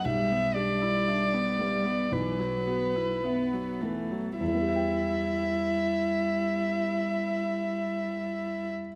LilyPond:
<<
  \new Staff \with { instrumentName = "Violin" } { \time 4/4 \key e \minor \tempo 4 = 52 e''8 d''4. b'4. r8 | e''1 | }
  \new Staff \with { instrumentName = "Felt piano" } { \time 4/4 \key e \minor b,,8 g'8 e''8 b8 b,,8 fis'8 e''8 b8 | <e, e b g' e'' g''>1 | }
  \new Staff \with { instrumentName = "Viola" } { \time 4/4 \key e \minor g16 b16 d'16 e'16 d'16 b16 g16 b16 e16 fis16 b16 e'16 b16 fis16 e16 fis16 | e'1 | }
  \new Staff \with { instrumentName = "Cello" } { \clef bass \time 4/4 \key e \minor g2 fis4 b8 a8 | g1 | }
>>